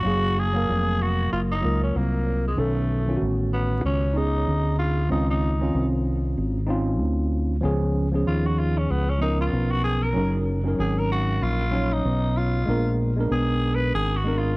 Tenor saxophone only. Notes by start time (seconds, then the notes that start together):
Already playing: F#4
0.39 G#4
1.02 F#4
1.33 F4
1.51 D#4
1.83 C#4
1.96 A#3
2.48 G#3
2.59 A3
3.53 B3
3.86 C#4
4.17 D#4
4.79 F4
5.12 D#4
5.30 D#4
8.28 F4
8.47 F#4
8.59 F4
8.78 C#4
8.91 B3
9.10 C#4
9.21 D#4
9.41 F4
9.71 F#4
9.84 G#4
10.03 A#4
10.80 G#4
10.99 A#4
11.12 F#4
11.43 F4
11.93 D#4
12.37 F4
13.32 G#4
13.75 B4
13.95 G#4
14.16 F#4
14.38 F4